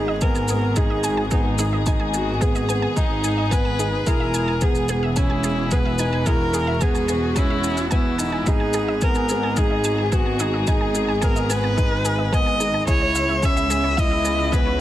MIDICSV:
0, 0, Header, 1, 7, 480
1, 0, Start_track
1, 0, Key_signature, 5, "minor"
1, 0, Tempo, 550459
1, 1627, Time_signature, 4, 2, 24, 8
1, 12911, End_track
2, 0, Start_track
2, 0, Title_t, "Synth arpeggio sound"
2, 0, Program_c, 0, 84
2, 70, Note_on_c, 0, 75, 82
2, 95, Note_off_c, 0, 75, 0
2, 188, Note_on_c, 0, 80, 98
2, 253, Note_off_c, 0, 80, 0
2, 308, Note_on_c, 0, 80, 77
2, 373, Note_off_c, 0, 80, 0
2, 429, Note_on_c, 0, 68, 76
2, 494, Note_off_c, 0, 68, 0
2, 663, Note_on_c, 0, 68, 102
2, 731, Note_off_c, 0, 68, 0
2, 785, Note_on_c, 0, 75, 78
2, 812, Note_off_c, 0, 75, 0
2, 903, Note_on_c, 0, 80, 99
2, 971, Note_off_c, 0, 80, 0
2, 1023, Note_on_c, 0, 80, 76
2, 1091, Note_off_c, 0, 80, 0
2, 1142, Note_on_c, 0, 68, 86
2, 1210, Note_off_c, 0, 68, 0
2, 1384, Note_on_c, 0, 68, 101
2, 1451, Note_off_c, 0, 68, 0
2, 1506, Note_on_c, 0, 75, 74
2, 1533, Note_off_c, 0, 75, 0
2, 1625, Note_on_c, 0, 80, 106
2, 1692, Note_off_c, 0, 80, 0
2, 1741, Note_on_c, 0, 80, 81
2, 1810, Note_off_c, 0, 80, 0
2, 1866, Note_on_c, 0, 68, 72
2, 1932, Note_off_c, 0, 68, 0
2, 2100, Note_on_c, 0, 68, 92
2, 2169, Note_off_c, 0, 68, 0
2, 2226, Note_on_c, 0, 75, 78
2, 2253, Note_off_c, 0, 75, 0
2, 2342, Note_on_c, 0, 80, 100
2, 2410, Note_off_c, 0, 80, 0
2, 2462, Note_on_c, 0, 80, 80
2, 2530, Note_off_c, 0, 80, 0
2, 2584, Note_on_c, 0, 68, 81
2, 2651, Note_off_c, 0, 68, 0
2, 2825, Note_on_c, 0, 68, 99
2, 2892, Note_off_c, 0, 68, 0
2, 2945, Note_on_c, 0, 75, 75
2, 2972, Note_off_c, 0, 75, 0
2, 3063, Note_on_c, 0, 80, 106
2, 3130, Note_off_c, 0, 80, 0
2, 3184, Note_on_c, 0, 80, 77
2, 3251, Note_off_c, 0, 80, 0
2, 3308, Note_on_c, 0, 68, 76
2, 3373, Note_off_c, 0, 68, 0
2, 3546, Note_on_c, 0, 68, 102
2, 3612, Note_off_c, 0, 68, 0
2, 3663, Note_on_c, 0, 76, 80
2, 3692, Note_off_c, 0, 76, 0
2, 3785, Note_on_c, 0, 80, 101
2, 3851, Note_off_c, 0, 80, 0
2, 3906, Note_on_c, 0, 80, 84
2, 3972, Note_off_c, 0, 80, 0
2, 4028, Note_on_c, 0, 68, 77
2, 4093, Note_off_c, 0, 68, 0
2, 4265, Note_on_c, 0, 68, 104
2, 4331, Note_off_c, 0, 68, 0
2, 4384, Note_on_c, 0, 76, 77
2, 4412, Note_off_c, 0, 76, 0
2, 4500, Note_on_c, 0, 80, 102
2, 4569, Note_off_c, 0, 80, 0
2, 4620, Note_on_c, 0, 80, 80
2, 4689, Note_off_c, 0, 80, 0
2, 4741, Note_on_c, 0, 68, 76
2, 4810, Note_off_c, 0, 68, 0
2, 4981, Note_on_c, 0, 68, 102
2, 5050, Note_off_c, 0, 68, 0
2, 5104, Note_on_c, 0, 76, 79
2, 5132, Note_off_c, 0, 76, 0
2, 5224, Note_on_c, 0, 80, 100
2, 5291, Note_off_c, 0, 80, 0
2, 5343, Note_on_c, 0, 80, 78
2, 5411, Note_off_c, 0, 80, 0
2, 5458, Note_on_c, 0, 68, 85
2, 5528, Note_off_c, 0, 68, 0
2, 5697, Note_on_c, 0, 68, 92
2, 5768, Note_off_c, 0, 68, 0
2, 5818, Note_on_c, 0, 76, 79
2, 5849, Note_off_c, 0, 76, 0
2, 5935, Note_on_c, 0, 80, 97
2, 6007, Note_off_c, 0, 80, 0
2, 6058, Note_on_c, 0, 80, 73
2, 6128, Note_off_c, 0, 80, 0
2, 6176, Note_on_c, 0, 68, 81
2, 6247, Note_off_c, 0, 68, 0
2, 6415, Note_on_c, 0, 68, 101
2, 6487, Note_off_c, 0, 68, 0
2, 6542, Note_on_c, 0, 76, 82
2, 6571, Note_off_c, 0, 76, 0
2, 6659, Note_on_c, 0, 80, 73
2, 6689, Note_off_c, 0, 80, 0
2, 6776, Note_on_c, 0, 88, 75
2, 6825, Note_off_c, 0, 88, 0
2, 6894, Note_on_c, 0, 80, 106
2, 6944, Note_off_c, 0, 80, 0
2, 7136, Note_on_c, 0, 80, 72
2, 7185, Note_off_c, 0, 80, 0
2, 7258, Note_on_c, 0, 80, 77
2, 7306, Note_off_c, 0, 80, 0
2, 7381, Note_on_c, 0, 68, 86
2, 7450, Note_off_c, 0, 68, 0
2, 7499, Note_on_c, 0, 80, 80
2, 7569, Note_off_c, 0, 80, 0
2, 7623, Note_on_c, 0, 68, 96
2, 7691, Note_off_c, 0, 68, 0
2, 7747, Note_on_c, 0, 75, 84
2, 7773, Note_off_c, 0, 75, 0
2, 7862, Note_on_c, 0, 80, 97
2, 7930, Note_off_c, 0, 80, 0
2, 7984, Note_on_c, 0, 80, 78
2, 8051, Note_off_c, 0, 80, 0
2, 8101, Note_on_c, 0, 68, 82
2, 8170, Note_off_c, 0, 68, 0
2, 8225, Note_on_c, 0, 80, 80
2, 8292, Note_off_c, 0, 80, 0
2, 8344, Note_on_c, 0, 68, 104
2, 8411, Note_off_c, 0, 68, 0
2, 8463, Note_on_c, 0, 75, 76
2, 8491, Note_off_c, 0, 75, 0
2, 8585, Note_on_c, 0, 80, 101
2, 8652, Note_off_c, 0, 80, 0
2, 8705, Note_on_c, 0, 80, 74
2, 8772, Note_off_c, 0, 80, 0
2, 8823, Note_on_c, 0, 68, 90
2, 8891, Note_off_c, 0, 68, 0
2, 8944, Note_on_c, 0, 80, 79
2, 9011, Note_off_c, 0, 80, 0
2, 9068, Note_on_c, 0, 68, 103
2, 9133, Note_off_c, 0, 68, 0
2, 9189, Note_on_c, 0, 75, 75
2, 9214, Note_off_c, 0, 75, 0
2, 9307, Note_on_c, 0, 80, 102
2, 9373, Note_off_c, 0, 80, 0
2, 9425, Note_on_c, 0, 80, 83
2, 9492, Note_off_c, 0, 80, 0
2, 9546, Note_on_c, 0, 68, 70
2, 9612, Note_off_c, 0, 68, 0
2, 9665, Note_on_c, 0, 80, 82
2, 9732, Note_off_c, 0, 80, 0
2, 9779, Note_on_c, 0, 68, 103
2, 9849, Note_off_c, 0, 68, 0
2, 9905, Note_on_c, 0, 75, 83
2, 9932, Note_off_c, 0, 75, 0
2, 10026, Note_on_c, 0, 80, 105
2, 10092, Note_off_c, 0, 80, 0
2, 10148, Note_on_c, 0, 80, 76
2, 10213, Note_off_c, 0, 80, 0
2, 10265, Note_on_c, 0, 68, 80
2, 10332, Note_off_c, 0, 68, 0
2, 10388, Note_on_c, 0, 80, 78
2, 10453, Note_off_c, 0, 80, 0
2, 10507, Note_on_c, 0, 68, 94
2, 10572, Note_off_c, 0, 68, 0
2, 10625, Note_on_c, 0, 75, 76
2, 10652, Note_off_c, 0, 75, 0
2, 10748, Note_on_c, 0, 80, 103
2, 10813, Note_off_c, 0, 80, 0
2, 10868, Note_on_c, 0, 80, 77
2, 10933, Note_off_c, 0, 80, 0
2, 10988, Note_on_c, 0, 68, 79
2, 11053, Note_off_c, 0, 68, 0
2, 11111, Note_on_c, 0, 80, 73
2, 11175, Note_off_c, 0, 80, 0
2, 11225, Note_on_c, 0, 68, 108
2, 11291, Note_off_c, 0, 68, 0
2, 11351, Note_on_c, 0, 73, 80
2, 11375, Note_off_c, 0, 73, 0
2, 11468, Note_on_c, 0, 76, 101
2, 11533, Note_off_c, 0, 76, 0
2, 11589, Note_on_c, 0, 76, 89
2, 11654, Note_off_c, 0, 76, 0
2, 11706, Note_on_c, 0, 68, 83
2, 11772, Note_off_c, 0, 68, 0
2, 11830, Note_on_c, 0, 76, 82
2, 11894, Note_off_c, 0, 76, 0
2, 11947, Note_on_c, 0, 68, 97
2, 12013, Note_off_c, 0, 68, 0
2, 12066, Note_on_c, 0, 73, 78
2, 12093, Note_off_c, 0, 73, 0
2, 12182, Note_on_c, 0, 76, 105
2, 12250, Note_off_c, 0, 76, 0
2, 12304, Note_on_c, 0, 76, 82
2, 12371, Note_off_c, 0, 76, 0
2, 12424, Note_on_c, 0, 68, 75
2, 12491, Note_off_c, 0, 68, 0
2, 12544, Note_on_c, 0, 76, 75
2, 12611, Note_off_c, 0, 76, 0
2, 12662, Note_on_c, 0, 68, 102
2, 12730, Note_off_c, 0, 68, 0
2, 12779, Note_on_c, 0, 73, 80
2, 12809, Note_off_c, 0, 73, 0
2, 12911, End_track
3, 0, Start_track
3, 0, Title_t, "Viola"
3, 0, Program_c, 1, 41
3, 0, Note_on_c, 1, 68, 104
3, 191, Note_on_c, 1, 70, 92
3, 204, Note_off_c, 1, 68, 0
3, 670, Note_on_c, 1, 68, 95
3, 683, Note_off_c, 1, 70, 0
3, 1144, Note_on_c, 1, 63, 76
3, 1157, Note_off_c, 1, 68, 0
3, 1506, Note_off_c, 1, 63, 0
3, 1871, Note_on_c, 1, 66, 85
3, 2105, Note_on_c, 1, 68, 93
3, 2118, Note_off_c, 1, 66, 0
3, 2590, Note_on_c, 1, 63, 93
3, 2603, Note_off_c, 1, 68, 0
3, 3073, Note_on_c, 1, 71, 100
3, 3086, Note_off_c, 1, 63, 0
3, 3550, Note_on_c, 1, 70, 105
3, 3563, Note_off_c, 1, 71, 0
3, 4033, Note_on_c, 1, 68, 99
3, 4046, Note_off_c, 1, 70, 0
3, 4515, Note_on_c, 1, 64, 94
3, 4528, Note_off_c, 1, 68, 0
3, 4989, Note_on_c, 1, 71, 97
3, 5002, Note_off_c, 1, 64, 0
3, 5466, Note_on_c, 1, 70, 109
3, 5479, Note_off_c, 1, 71, 0
3, 5950, Note_on_c, 1, 68, 100
3, 5963, Note_off_c, 1, 70, 0
3, 6429, Note_on_c, 1, 64, 101
3, 6442, Note_off_c, 1, 68, 0
3, 6903, Note_off_c, 1, 64, 0
3, 6908, Note_on_c, 1, 64, 95
3, 7389, Note_on_c, 1, 68, 110
3, 7402, Note_off_c, 1, 64, 0
3, 7878, Note_on_c, 1, 70, 100
3, 7892, Note_off_c, 1, 68, 0
3, 8355, Note_on_c, 1, 68, 105
3, 8368, Note_off_c, 1, 70, 0
3, 8834, Note_on_c, 1, 66, 100
3, 8847, Note_off_c, 1, 68, 0
3, 9314, Note_on_c, 1, 68, 104
3, 9328, Note_off_c, 1, 66, 0
3, 9798, Note_on_c, 1, 70, 97
3, 9811, Note_off_c, 1, 68, 0
3, 10043, Note_on_c, 1, 71, 115
3, 10056, Note_off_c, 1, 70, 0
3, 10759, Note_on_c, 1, 75, 113
3, 10772, Note_off_c, 1, 71, 0
3, 11226, Note_off_c, 1, 75, 0
3, 11231, Note_on_c, 1, 73, 118
3, 11726, Note_on_c, 1, 76, 107
3, 11739, Note_off_c, 1, 73, 0
3, 12205, Note_on_c, 1, 75, 111
3, 12218, Note_off_c, 1, 76, 0
3, 12674, Note_on_c, 1, 71, 109
3, 12687, Note_off_c, 1, 75, 0
3, 12911, Note_off_c, 1, 71, 0
3, 12911, End_track
4, 0, Start_track
4, 0, Title_t, "Felt piano"
4, 0, Program_c, 2, 0
4, 197, Note_on_c, 2, 59, 89
4, 380, Note_off_c, 2, 59, 0
4, 439, Note_on_c, 2, 59, 72
4, 621, Note_off_c, 2, 59, 0
4, 672, Note_on_c, 2, 63, 94
4, 1044, Note_off_c, 2, 63, 0
4, 1154, Note_on_c, 2, 59, 81
4, 1339, Note_off_c, 2, 59, 0
4, 1395, Note_on_c, 2, 63, 79
4, 1579, Note_off_c, 2, 63, 0
4, 1636, Note_on_c, 2, 63, 98
4, 2007, Note_off_c, 2, 63, 0
4, 2108, Note_on_c, 2, 59, 84
4, 2295, Note_off_c, 2, 59, 0
4, 2350, Note_on_c, 2, 59, 80
4, 2536, Note_off_c, 2, 59, 0
4, 2591, Note_on_c, 2, 63, 88
4, 2964, Note_off_c, 2, 63, 0
4, 3061, Note_on_c, 2, 59, 79
4, 3251, Note_off_c, 2, 59, 0
4, 3306, Note_on_c, 2, 63, 77
4, 3494, Note_off_c, 2, 63, 0
4, 3548, Note_on_c, 2, 64, 103
4, 3922, Note_off_c, 2, 64, 0
4, 4027, Note_on_c, 2, 59, 90
4, 4214, Note_off_c, 2, 59, 0
4, 4264, Note_on_c, 2, 59, 80
4, 4453, Note_off_c, 2, 59, 0
4, 4505, Note_on_c, 2, 61, 101
4, 4880, Note_off_c, 2, 61, 0
4, 4989, Note_on_c, 2, 59, 84
4, 5175, Note_off_c, 2, 59, 0
4, 5229, Note_on_c, 2, 63, 80
4, 5416, Note_off_c, 2, 63, 0
4, 5468, Note_on_c, 2, 64, 99
4, 5842, Note_off_c, 2, 64, 0
4, 5944, Note_on_c, 2, 59, 84
4, 6132, Note_off_c, 2, 59, 0
4, 6187, Note_on_c, 2, 59, 74
4, 6374, Note_off_c, 2, 59, 0
4, 6429, Note_on_c, 2, 61, 96
4, 6802, Note_off_c, 2, 61, 0
4, 6905, Note_on_c, 2, 59, 80
4, 7093, Note_off_c, 2, 59, 0
4, 7146, Note_on_c, 2, 63, 70
4, 7334, Note_off_c, 2, 63, 0
4, 7393, Note_on_c, 2, 63, 101
4, 7765, Note_off_c, 2, 63, 0
4, 7873, Note_on_c, 2, 59, 88
4, 8058, Note_off_c, 2, 59, 0
4, 8116, Note_on_c, 2, 59, 76
4, 8299, Note_off_c, 2, 59, 0
4, 8355, Note_on_c, 2, 63, 94
4, 8726, Note_off_c, 2, 63, 0
4, 8829, Note_on_c, 2, 59, 78
4, 9015, Note_off_c, 2, 59, 0
4, 9074, Note_on_c, 2, 63, 79
4, 9259, Note_off_c, 2, 63, 0
4, 9310, Note_on_c, 2, 63, 100
4, 9683, Note_off_c, 2, 63, 0
4, 9792, Note_on_c, 2, 59, 84
4, 9977, Note_off_c, 2, 59, 0
4, 10024, Note_on_c, 2, 59, 80
4, 10212, Note_off_c, 2, 59, 0
4, 10268, Note_on_c, 2, 63, 92
4, 10642, Note_off_c, 2, 63, 0
4, 10746, Note_on_c, 2, 59, 84
4, 10933, Note_off_c, 2, 59, 0
4, 10990, Note_on_c, 2, 63, 78
4, 11176, Note_off_c, 2, 63, 0
4, 11228, Note_on_c, 2, 64, 96
4, 11602, Note_off_c, 2, 64, 0
4, 11713, Note_on_c, 2, 61, 84
4, 11898, Note_off_c, 2, 61, 0
4, 11950, Note_on_c, 2, 61, 83
4, 12136, Note_off_c, 2, 61, 0
4, 12190, Note_on_c, 2, 64, 90
4, 12563, Note_off_c, 2, 64, 0
4, 12670, Note_on_c, 2, 59, 84
4, 12856, Note_off_c, 2, 59, 0
4, 12911, End_track
5, 0, Start_track
5, 0, Title_t, "String section"
5, 0, Program_c, 3, 48
5, 0, Note_on_c, 3, 51, 82
5, 0, Note_on_c, 3, 56, 70
5, 0, Note_on_c, 3, 59, 70
5, 0, Note_on_c, 3, 68, 92
5, 3514, Note_off_c, 3, 56, 0
5, 3514, Note_off_c, 3, 59, 0
5, 3516, Note_off_c, 3, 51, 0
5, 3536, Note_on_c, 3, 52, 86
5, 3539, Note_on_c, 3, 56, 78
5, 3539, Note_on_c, 3, 59, 77
5, 5433, Note_off_c, 3, 68, 0
5, 5472, Note_on_c, 3, 66, 89
5, 7347, Note_off_c, 3, 52, 0
5, 7370, Note_off_c, 3, 66, 0
5, 7381, Note_on_c, 3, 51, 78
5, 7383, Note_on_c, 3, 68, 89
5, 11188, Note_off_c, 3, 59, 0
5, 11189, Note_off_c, 3, 51, 0
5, 11190, Note_off_c, 3, 68, 0
5, 11225, Note_on_c, 3, 49, 87
5, 11228, Note_on_c, 3, 59, 78
5, 11229, Note_on_c, 3, 64, 91
5, 12911, Note_off_c, 3, 49, 0
5, 12911, Note_off_c, 3, 56, 0
5, 12911, Note_off_c, 3, 59, 0
5, 12911, Note_off_c, 3, 64, 0
5, 12911, End_track
6, 0, Start_track
6, 0, Title_t, "Double bass section"
6, 0, Program_c, 4, 48
6, 0, Note_on_c, 4, 32, 94
6, 3525, Note_off_c, 4, 32, 0
6, 3550, Note_on_c, 4, 28, 96
6, 7365, Note_off_c, 4, 28, 0
6, 7386, Note_on_c, 4, 32, 89
6, 11203, Note_off_c, 4, 32, 0
6, 11230, Note_on_c, 4, 37, 96
6, 12911, Note_off_c, 4, 37, 0
6, 12911, End_track
7, 0, Start_track
7, 0, Title_t, "Drums"
7, 185, Note_on_c, 9, 82, 41
7, 191, Note_on_c, 9, 36, 108
7, 273, Note_off_c, 9, 82, 0
7, 278, Note_off_c, 9, 36, 0
7, 306, Note_on_c, 9, 82, 30
7, 393, Note_off_c, 9, 82, 0
7, 419, Note_on_c, 9, 82, 58
7, 506, Note_off_c, 9, 82, 0
7, 664, Note_on_c, 9, 82, 41
7, 670, Note_on_c, 9, 36, 105
7, 751, Note_off_c, 9, 82, 0
7, 757, Note_off_c, 9, 36, 0
7, 904, Note_on_c, 9, 82, 62
7, 991, Note_off_c, 9, 82, 0
7, 1143, Note_on_c, 9, 82, 44
7, 1149, Note_on_c, 9, 36, 102
7, 1230, Note_off_c, 9, 82, 0
7, 1236, Note_off_c, 9, 36, 0
7, 1381, Note_on_c, 9, 82, 65
7, 1468, Note_off_c, 9, 82, 0
7, 1623, Note_on_c, 9, 82, 41
7, 1628, Note_on_c, 9, 36, 100
7, 1711, Note_off_c, 9, 82, 0
7, 1716, Note_off_c, 9, 36, 0
7, 1865, Note_on_c, 9, 82, 58
7, 1953, Note_off_c, 9, 82, 0
7, 2107, Note_on_c, 9, 82, 39
7, 2109, Note_on_c, 9, 36, 98
7, 2194, Note_off_c, 9, 82, 0
7, 2196, Note_off_c, 9, 36, 0
7, 2226, Note_on_c, 9, 82, 28
7, 2314, Note_off_c, 9, 82, 0
7, 2350, Note_on_c, 9, 82, 57
7, 2437, Note_off_c, 9, 82, 0
7, 2588, Note_on_c, 9, 36, 101
7, 2589, Note_on_c, 9, 82, 39
7, 2675, Note_off_c, 9, 36, 0
7, 2676, Note_off_c, 9, 82, 0
7, 2826, Note_on_c, 9, 82, 62
7, 2913, Note_off_c, 9, 82, 0
7, 3068, Note_on_c, 9, 36, 101
7, 3071, Note_on_c, 9, 82, 42
7, 3155, Note_off_c, 9, 36, 0
7, 3158, Note_off_c, 9, 82, 0
7, 3310, Note_on_c, 9, 82, 59
7, 3397, Note_off_c, 9, 82, 0
7, 3547, Note_on_c, 9, 82, 39
7, 3548, Note_on_c, 9, 36, 98
7, 3634, Note_off_c, 9, 82, 0
7, 3636, Note_off_c, 9, 36, 0
7, 3787, Note_on_c, 9, 82, 59
7, 3874, Note_off_c, 9, 82, 0
7, 4022, Note_on_c, 9, 82, 40
7, 4028, Note_on_c, 9, 36, 99
7, 4109, Note_off_c, 9, 82, 0
7, 4116, Note_off_c, 9, 36, 0
7, 4142, Note_on_c, 9, 82, 28
7, 4229, Note_off_c, 9, 82, 0
7, 4259, Note_on_c, 9, 82, 60
7, 4347, Note_off_c, 9, 82, 0
7, 4502, Note_on_c, 9, 82, 41
7, 4509, Note_on_c, 9, 36, 98
7, 4589, Note_off_c, 9, 82, 0
7, 4596, Note_off_c, 9, 36, 0
7, 4740, Note_on_c, 9, 82, 62
7, 4828, Note_off_c, 9, 82, 0
7, 4980, Note_on_c, 9, 82, 42
7, 4988, Note_on_c, 9, 36, 99
7, 5067, Note_off_c, 9, 82, 0
7, 5075, Note_off_c, 9, 36, 0
7, 5220, Note_on_c, 9, 82, 55
7, 5307, Note_off_c, 9, 82, 0
7, 5461, Note_on_c, 9, 82, 38
7, 5466, Note_on_c, 9, 36, 109
7, 5548, Note_off_c, 9, 82, 0
7, 5553, Note_off_c, 9, 36, 0
7, 5702, Note_on_c, 9, 82, 54
7, 5789, Note_off_c, 9, 82, 0
7, 5939, Note_on_c, 9, 82, 41
7, 5945, Note_on_c, 9, 36, 104
7, 6026, Note_off_c, 9, 82, 0
7, 6033, Note_off_c, 9, 36, 0
7, 6060, Note_on_c, 9, 82, 28
7, 6148, Note_off_c, 9, 82, 0
7, 6179, Note_on_c, 9, 82, 59
7, 6267, Note_off_c, 9, 82, 0
7, 6420, Note_on_c, 9, 82, 38
7, 6424, Note_on_c, 9, 36, 102
7, 6507, Note_off_c, 9, 82, 0
7, 6512, Note_off_c, 9, 36, 0
7, 6660, Note_on_c, 9, 82, 59
7, 6747, Note_off_c, 9, 82, 0
7, 6778, Note_on_c, 9, 82, 27
7, 6865, Note_off_c, 9, 82, 0
7, 6901, Note_on_c, 9, 82, 43
7, 6906, Note_on_c, 9, 36, 101
7, 6988, Note_off_c, 9, 82, 0
7, 6993, Note_off_c, 9, 36, 0
7, 7143, Note_on_c, 9, 82, 58
7, 7230, Note_off_c, 9, 82, 0
7, 7381, Note_on_c, 9, 82, 39
7, 7386, Note_on_c, 9, 36, 105
7, 7468, Note_off_c, 9, 82, 0
7, 7473, Note_off_c, 9, 36, 0
7, 7616, Note_on_c, 9, 82, 61
7, 7703, Note_off_c, 9, 82, 0
7, 7860, Note_on_c, 9, 82, 45
7, 7866, Note_on_c, 9, 36, 106
7, 7947, Note_off_c, 9, 82, 0
7, 7953, Note_off_c, 9, 36, 0
7, 7977, Note_on_c, 9, 82, 27
7, 8064, Note_off_c, 9, 82, 0
7, 8100, Note_on_c, 9, 82, 57
7, 8187, Note_off_c, 9, 82, 0
7, 8342, Note_on_c, 9, 82, 40
7, 8347, Note_on_c, 9, 36, 104
7, 8430, Note_off_c, 9, 82, 0
7, 8434, Note_off_c, 9, 36, 0
7, 8582, Note_on_c, 9, 82, 57
7, 8669, Note_off_c, 9, 82, 0
7, 8828, Note_on_c, 9, 36, 107
7, 8828, Note_on_c, 9, 82, 44
7, 8915, Note_off_c, 9, 36, 0
7, 8915, Note_off_c, 9, 82, 0
7, 9065, Note_on_c, 9, 82, 64
7, 9152, Note_off_c, 9, 82, 0
7, 9305, Note_on_c, 9, 82, 44
7, 9309, Note_on_c, 9, 36, 118
7, 9393, Note_off_c, 9, 82, 0
7, 9396, Note_off_c, 9, 36, 0
7, 9548, Note_on_c, 9, 82, 61
7, 9635, Note_off_c, 9, 82, 0
7, 9786, Note_on_c, 9, 82, 44
7, 9790, Note_on_c, 9, 36, 115
7, 9873, Note_off_c, 9, 82, 0
7, 9877, Note_off_c, 9, 36, 0
7, 9908, Note_on_c, 9, 82, 30
7, 9995, Note_off_c, 9, 82, 0
7, 10028, Note_on_c, 9, 82, 62
7, 10115, Note_off_c, 9, 82, 0
7, 10272, Note_on_c, 9, 36, 107
7, 10272, Note_on_c, 9, 82, 45
7, 10359, Note_off_c, 9, 36, 0
7, 10359, Note_off_c, 9, 82, 0
7, 10509, Note_on_c, 9, 82, 66
7, 10596, Note_off_c, 9, 82, 0
7, 10751, Note_on_c, 9, 36, 107
7, 10754, Note_on_c, 9, 82, 46
7, 10838, Note_off_c, 9, 36, 0
7, 10842, Note_off_c, 9, 82, 0
7, 10992, Note_on_c, 9, 82, 61
7, 11079, Note_off_c, 9, 82, 0
7, 11229, Note_on_c, 9, 82, 45
7, 11231, Note_on_c, 9, 36, 116
7, 11316, Note_off_c, 9, 82, 0
7, 11318, Note_off_c, 9, 36, 0
7, 11469, Note_on_c, 9, 82, 65
7, 11556, Note_off_c, 9, 82, 0
7, 11710, Note_on_c, 9, 36, 110
7, 11711, Note_on_c, 9, 82, 45
7, 11797, Note_off_c, 9, 36, 0
7, 11798, Note_off_c, 9, 82, 0
7, 11834, Note_on_c, 9, 82, 32
7, 11922, Note_off_c, 9, 82, 0
7, 11950, Note_on_c, 9, 82, 65
7, 12037, Note_off_c, 9, 82, 0
7, 12190, Note_on_c, 9, 36, 116
7, 12192, Note_on_c, 9, 82, 45
7, 12277, Note_off_c, 9, 36, 0
7, 12279, Note_off_c, 9, 82, 0
7, 12428, Note_on_c, 9, 82, 62
7, 12515, Note_off_c, 9, 82, 0
7, 12668, Note_on_c, 9, 36, 116
7, 12672, Note_on_c, 9, 82, 45
7, 12756, Note_off_c, 9, 36, 0
7, 12759, Note_off_c, 9, 82, 0
7, 12911, End_track
0, 0, End_of_file